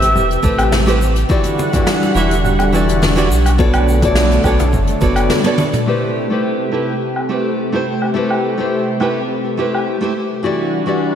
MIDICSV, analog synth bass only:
0, 0, Header, 1, 2, 480
1, 0, Start_track
1, 0, Tempo, 571429
1, 1092, Time_signature, 4, 2, 24, 8
1, 9366, End_track
2, 0, Start_track
2, 0, Title_t, "Analog synth bass"
2, 0, Program_c, 0, 38
2, 0, Note_on_c, 0, 33, 92
2, 123, Note_on_c, 0, 28, 85
2, 135, Note_off_c, 0, 33, 0
2, 313, Note_off_c, 0, 28, 0
2, 366, Note_on_c, 0, 33, 77
2, 1046, Note_off_c, 0, 33, 0
2, 1807, Note_on_c, 0, 28, 99
2, 2766, Note_on_c, 0, 35, 93
2, 2779, Note_off_c, 0, 28, 0
2, 3686, Note_off_c, 0, 35, 0
2, 3731, Note_on_c, 0, 35, 89
2, 3974, Note_on_c, 0, 30, 84
2, 3987, Note_off_c, 0, 35, 0
2, 4159, Note_off_c, 0, 30, 0
2, 4211, Note_on_c, 0, 30, 93
2, 4452, Note_off_c, 0, 30, 0
2, 9366, End_track
0, 0, End_of_file